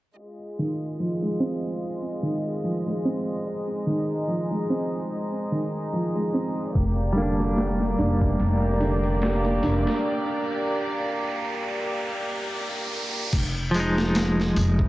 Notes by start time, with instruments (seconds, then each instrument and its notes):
0.18 violin section G#3 F4 D#5
0.59 felt piano D#3
1.00 felt piano F3
1.22 felt piano G#3
1.40 felt piano C4
2.23 felt piano D#3
2.64 felt piano F3
2.87 felt piano G#3
3.05 felt piano C4
3.47 violin section D#4
3.87 felt piano D#3
4.28 felt piano F3
4.51 felt piano G#3
4.70 felt piano C4
5.52 felt piano D#3
5.93 felt piano F3
6.15 felt piano G#3
6.34 felt piano C4
6.75 upright bass F1, violin section A#3 G4 D5, kick, open hi-hat, riser
7.13 felt piano D3, clean electric guitar G3, open hi-hat
7.18 clean electric guitar A#3
7.22 clean electric guitar D4
7.40 snare
7.57 felt piano G3, snare, open hi-hat
7.80 felt piano A#3, snare
7.98 upright bass F1, felt piano D4, snare, open hi-hat
8.21 kick
8.39 upright bass F1, open hi-hat
8.80 felt piano D3, open hi-hat
9.03 closed hi-hat
9.22 felt piano G3, snare, open hi-hat
9.45 felt piano A#3, closed hi-hat
9.63 upright bass F1, felt piano D4, open hi-hat
9.87 snare
13.33 upright bass F1, kick, open hi-hat, crash
13.71 clean electric guitar F3, open hi-hat
13.75 clean electric guitar G#3
13.80 clean electric guitar D#4
13.98 snare
14.15 snare, open hi-hat
14.40 snare
14.56 upright bass F1, open hi-hat
14.79 kick